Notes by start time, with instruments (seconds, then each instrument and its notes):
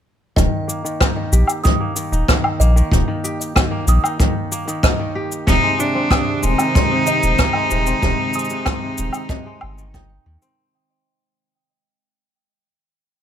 0.36 sub bass D#1, kora D#3, music box D#5, kick, cabasa
0.68 kora A#3, cabasa
0.84 kora D#3, cabasa
1.00 kora D#4, kick, cross-stick, cabasa, low woodblock
1.16 kora D#3
1.32 sub bass A#1, kora G4, cabasa
1.47 cabasa, low woodblock
1.64 kora D#3, music box D#6, kick, cabasa
1.80 kora A#3
1.96 kora D#3, cabasa
2.12 sub bass D#1, kora D#4, cabasa
2.28 kora D#3, kick, cross-stick, cabasa
2.44 low woodblock
2.59 sub bass A#1, kora A#3, music box D#5, cabasa
2.76 kora D#3, cabasa
2.91 sub bass D#1, kora D#4, kick, cabasa
3.08 kora D#3
3.24 kora G4, cabasa
3.41 cabasa
3.55 kora D#3, kick, cross-stick, cabasa, low woodblock
3.71 kora A#3
3.87 sub bass A#1, kora D#3, music box D#6, cabasa
4.03 kora D#4, cabasa, low woodblock
4.20 kora D#3, kick, cabasa
4.52 kora A#3, cabasa
4.67 kora D#3, cabasa
4.83 kora D#4, music box D#5, kick, cross-stick, cabasa
4.99 kora D#3
5.15 kora G4
5.32 cabasa
5.47 sub bass D#1, kora C3, ambient pad C3 D#3 G#3 C4, cello D#4, kick, cabasa
5.63 kora G#3
5.79 kora C3, cello D4, cabasa
5.95 kora C4
6.10 kora C3, music box D#6, kick, cross-stick, cabasa, low woodblock
6.43 sub bass D#1, kora G#3, cello D#4, cabasa
6.58 kora C3, cabasa, low woodblock
6.75 kora C4, kick, cabasa
6.91 kora C3
7.07 kora D#4, music box D#5, cabasa
7.23 sub bass D#1, cabasa
7.39 kora C3, kick, cross-stick, cabasa
7.53 kora G#3, low woodblock
7.71 sub bass D#1, kora C3, cabasa
7.87 kora C4, cabasa
8.02 sub bass D#1, kora C3, kick, cabasa
8.33 kora G#3, music box D#6, cabasa
8.39 cabasa
8.45 cabasa
8.50 kora C3, cabasa
8.65 kora C4, kick, cross-stick, cabasa, low woodblock
8.82 kora C3
8.98 sub bass D#1, kora D#4, cabasa
9.13 cabasa, low woodblock
9.29 kora C3, music box D#5, kick, cabasa
9.46 kora G#3
9.61 sub bass G1, low woodblock
9.78 kora D#3, cabasa
9.94 kora D#4, music box G5, kick, cabasa
10.26 sub bass D#2, kora D#3
10.42 kora C4, cabasa